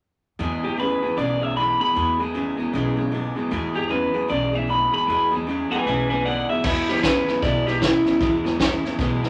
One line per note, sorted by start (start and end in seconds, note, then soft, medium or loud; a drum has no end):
0.39 0.63 E2 medium
0.39 0.94 E2 medium
0.39 0.61 E2 medium
0.39 0.63 B2 medium
0.39 0.61 B2 loud
0.39 0.63 E3 medium
0.39 0.64 G#3 medium
0.39 0.63 B3 medium
0.39 0.62 G#4 medium
0.63 0.77 E2 medium
0.63 0.77 B2 medium
0.63 0.76 E3 soft
0.63 0.78 G#3 soft
0.63 0.78 B3 soft
0.63 0.79 G4 medium
0.63 0.78 G#4 soft
0.78 1.00 E2 medium
0.78 1.00 C#3 medium
0.78 1.02 E3 medium
0.78 1.03 G#3 medium
0.78 1.02 B3 medium
0.78 1.01 G#4 medium
0.78 1.17 B4 medium
1.02 1.16 E2 medium
1.02 1.16 B2 medium
1.02 1.17 E3 soft
1.02 1.17 G#3 soft
1.02 1.18 B3 soft
1.02 1.17 G#4 soft
1.17 1.72 B1 medium
1.17 1.41 E2 medium
1.17 1.39 E2 medium
1.17 1.42 B2 medium
1.17 1.39 C#3 medium
1.17 1.42 E3 medium
1.17 1.42 G#3 medium
1.17 1.41 B3 medium
1.17 1.40 G#4 medium
1.17 1.43 D5 medium
1.40 1.54 E2 medium
1.40 1.55 C#3 medium
1.40 1.57 G#3 soft
1.40 1.57 B3 soft
1.40 1.56 G#4 soft
1.40 1.56 E5 medium
1.45 1.56 E3 soft
1.56 1.78 E2 medium
1.56 1.78 D3 medium
1.56 1.81 E3 medium
1.56 1.81 G#3 medium
1.56 1.81 B3 medium
1.56 1.80 G#4 medium
1.56 1.80 B5 medium
1.80 1.94 E2 medium
1.80 1.94 B2 medium
1.80 1.95 G#3 soft
1.80 1.96 B3 soft
1.80 1.96 G#4 medium
1.80 2.19 B5 medium
1.84 1.95 E3 soft
1.95 2.17 E2 medium
1.95 2.19 E2 medium
1.95 2.51 E2 medium
1.95 2.19 B2 medium
1.95 2.17 B2 medium
1.95 2.20 E3 medium
1.95 2.20 G#3 medium
1.95 2.19 B3 medium
1.95 2.18 G#4 medium
2.19 2.33 E2 medium
2.19 2.34 B2 medium
2.19 2.33 E3 soft
2.19 2.34 G#3 medium
2.19 2.35 B3 soft
2.19 2.34 G#4 soft
2.34 2.56 E2 medium
2.34 2.56 C#3 medium
2.34 2.59 E3 medium
2.34 2.58 G#3 medium
2.34 2.57 B3 medium
2.34 2.56 G#4 medium
2.57 2.71 E2 medium
2.57 2.72 B2 medium
2.57 2.74 E3 soft
2.57 2.74 G#3 medium
2.57 2.74 B3 medium
2.57 2.73 G#4 medium
2.72 3.28 B1 medium
2.72 2.95 E2 medium
2.72 2.98 E2 medium
2.72 2.98 B2 medium
2.72 2.95 C#3 medium
2.72 2.98 E3 medium
2.72 2.98 G#3 medium
2.72 2.97 B3 medium
2.72 2.96 G#4 medium
2.97 3.11 E2 medium
2.97 3.11 C#3 medium
2.97 3.11 E3 soft
2.97 3.11 G#3 soft
2.97 3.13 B3 medium
2.97 3.12 G#4 medium
3.12 3.34 E2 medium
3.12 3.34 D3 medium
3.12 3.36 E3 medium
3.12 3.37 G#3 medium
3.12 3.36 B3 medium
3.12 3.35 G#4 medium
3.35 3.49 E2 medium
3.35 3.50 B2 medium
3.35 3.51 G#3 medium
3.35 3.52 B3 medium
3.35 3.52 G#4 medium
3.39 3.51 E3 soft
3.51 3.75 E2 medium
3.51 3.73 E2 medium
3.51 4.06 E2 medium
3.51 3.73 B2 medium
3.51 3.76 B2 medium
3.51 3.76 E3 medium
3.51 3.75 G#3 medium
3.51 3.75 B3 medium
3.51 3.73 G#4 medium
3.75 3.89 E2 medium
3.75 3.89 B2 medium
3.75 3.88 E3 soft
3.75 3.89 G#3 medium
3.75 3.90 B3 medium
3.75 3.90 G4 loud
3.75 3.90 G#4 medium
3.89 4.12 E2 medium
3.89 4.12 C#3 medium
3.89 4.14 E3 medium
3.89 4.15 G#3 medium
3.89 4.13 B3 medium
3.89 4.13 G#4 medium
3.89 4.29 B4 medium
4.14 4.28 E2 medium
4.14 4.28 B2 medium
4.14 4.28 E3 soft
4.14 4.28 G#3 soft
4.14 4.29 B3 soft
4.14 4.29 G#4 medium
4.28 4.85 B1 medium
4.28 4.53 E2 medium
4.28 4.52 E2 medium
4.28 4.53 B2 medium
4.28 4.52 C#3 medium
4.28 4.54 E3 medium
4.28 4.54 G#3 medium
4.28 4.53 B3 medium
4.28 4.52 G#4 medium
4.28 4.55 D5 medium
4.53 4.68 E2 medium
4.53 4.68 C#3 medium
4.53 4.66 E3 soft
4.53 4.68 G#3 soft
4.53 4.69 B3 medium
4.53 4.68 G#4 soft
4.53 4.69 E5 medium
4.67 4.91 E2 medium
4.67 4.91 D3 medium
4.67 4.92 E3 medium
4.67 4.93 G#3 medium
4.67 4.92 B3 medium
4.67 4.90 G#4 medium
4.67 4.93 B5 medium
4.91 5.06 E2 medium
4.91 5.06 B2 medium
4.91 5.08 E3 soft
4.91 5.09 G#3 soft
4.91 5.08 B3 soft
4.91 5.07 G#4 medium
4.91 5.32 B5 medium
5.07 5.29 E2 medium
5.07 5.63 E2 medium
5.07 5.32 E2 medium
5.07 5.29 B2 medium
5.07 5.33 B2 medium
5.07 5.33 E3 medium
5.07 5.33 G#3 medium
5.07 5.32 B3 medium
5.07 5.31 G#4 medium
5.31 5.45 E2 medium
5.31 5.46 B2 medium
5.31 5.46 E3 soft
5.31 5.47 G#3 medium
5.31 5.48 B3 medium
5.31 5.47 G#4 medium
5.47 5.69 E2 medium
5.47 5.69 C#3 medium
5.47 5.71 E3 medium
5.47 5.72 G#3 medium
5.47 5.72 B3 medium
5.47 5.70 G#4 medium
5.71 5.85 E2 medium
5.71 5.85 B2 medium
5.71 5.87 G#3 soft
5.71 5.87 B3 soft
5.71 5.86 G#4 soft
5.71 5.85 B4 medium
5.71 5.86 G#5 loud
5.75 5.87 E3 soft
5.86 6.41 B1 medium
5.86 6.08 E2 medium
5.86 6.11 E2 medium
5.86 6.11 B2 medium
5.86 6.08 C#3 medium
5.86 6.11 E3 medium
5.86 6.11 G#3 medium
5.86 6.11 B3 medium
5.86 6.10 G#4 medium
5.86 6.09 B4 medium
5.86 6.09 G#5 medium
6.09 6.23 E2 medium
6.09 6.23 C#3 loud
6.09 6.26 G#3 soft
6.09 6.26 B3 soft
6.09 6.26 G#4 soft
6.09 6.24 B4 medium
6.09 6.25 G#5 medium
6.14 6.24 E3 soft
6.25 6.47 E2 medium
6.25 6.47 D3 medium
6.25 6.49 E3 medium
6.25 6.50 G#3 medium
6.25 6.50 B3 medium
6.25 6.47 D5 medium
6.25 6.49 F#5 medium
6.29 6.49 G#4 medium
6.49 6.63 E2 medium
6.49 6.63 B2 medium
6.49 6.64 G#3 soft
6.49 6.65 B3 medium
6.49 6.65 G#4 medium
6.49 6.64 E5 medium
6.53 6.64 E3 soft
6.64 6.86 E2 medium
6.64 6.88 E2 medium
6.64 7.19 E2 medium
6.64 6.86 B2 medium
6.64 6.89 B2 medium
6.64 6.89 E3 medium
6.64 6.89 G#3 medium
6.64 6.89 B3 medium
6.64 6.88 E4 medium
6.64 kick loud
6.64 snare soft
6.64 crash loud
6.88 7.02 E2 medium
6.88 7.02 B2 medium
6.88 7.03 E3 soft
6.88 7.04 G#3 medium
6.88 7.05 B3 soft
6.88 7.04 E4 medium
6.88 7.03 G4 medium
6.88 snare soft
6.96 snare soft
7.03 7.25 E2 medium
7.03 7.25 C#3 medium
7.03 7.28 E3 medium
7.03 7.28 G#3 medium
7.03 7.28 B3 medium
7.03 7.41 B4 medium
7.03 kick medium
7.03 snare loud
7.03 hi-hat pedal medium
7.07 7.27 E4 medium
7.27 7.41 E2 medium
7.27 7.41 C#3 medium
7.27 7.43 G#3 soft
7.27 7.43 B3 soft
7.27 7.43 E4 medium
7.27 snare soft
7.31 7.43 E3 soft
7.42 7.97 B1 medium
7.42 7.64 E2 medium
7.42 7.67 E2 medium
7.42 7.67 B2 medium
7.42 7.65 B2 loud
7.42 7.67 E3 medium
7.42 7.67 G#3 medium
7.42 7.67 B3 medium
7.42 7.65 E4 medium
7.42 7.66 D5 medium
7.42 kick loud
7.42 snare soft
7.67 7.80 E2 medium
7.67 7.80 B2 medium
7.67 7.80 E3 soft
7.67 7.82 G#3 soft
7.67 7.82 B3 soft
7.67 7.82 E4 medium
7.67 7.81 G4 medium
7.67 snare soft
7.81 8.03 E2 medium
7.81 8.03 C#3 medium
7.81 8.06 E3 medium
7.81 8.06 G#3 medium
7.81 8.05 B3 medium
7.81 8.57 E4 medium
7.81 8.04 E4 medium
7.81 kick medium
7.81 snare loud
7.81 hi-hat pedal medium
8.05 8.19 E2 medium
8.05 8.19 C#3 medium
8.05 8.20 E3 soft
8.05 8.20 G#3 soft
8.05 8.21 B3 soft
8.05 8.20 E4 medium
8.05 snare soft
8.20 8.44 E2 medium
8.20 8.75 E2 medium
8.20 8.42 E2 medium
8.20 8.45 B2 medium
8.20 8.42 B2 medium
8.20 8.45 E3 medium
8.20 8.45 G#3 medium
8.20 8.44 B3 medium
8.20 8.43 E4 medium
8.20 kick loud
8.20 snare soft
8.44 8.58 E2 medium
8.44 8.58 B2 medium
8.44 8.58 E3 soft
8.44 8.59 G#3 medium
8.44 8.60 B3 medium
8.44 8.60 E4 medium
8.44 snare soft
8.59 8.81 E2 medium
8.59 8.81 C#3 medium
8.59 8.84 E3 medium
8.59 8.84 G#3 medium
8.59 8.85 B3 medium
8.59 8.83 E4 medium
8.59 kick medium
8.59 snare loud
8.59 hi-hat pedal medium
8.83 8.97 E2 medium
8.83 8.97 C#3 medium
8.83 8.99 G#3 medium
8.83 9.00 B3 medium
8.83 8.99 E4 medium
8.83 snare soft
8.88 8.99 E3 soft
8.98 9.29 B1 medium
8.98 9.20 E2 medium
8.98 9.23 E2 medium
8.98 9.21 B2 loud
8.98 9.23 B2 medium
8.98 9.23 E3 medium
8.98 9.24 G#3 medium
8.98 9.23 B3 medium
8.98 9.22 E4 medium
8.98 kick loud
8.98 snare soft
9.23 9.29 E2 medium
9.23 9.29 B2 medium
9.23 9.29 E3 soft
9.23 9.29 G#3 soft
9.23 9.29 B3 medium
9.23 9.29 E4 medium
9.23 snare soft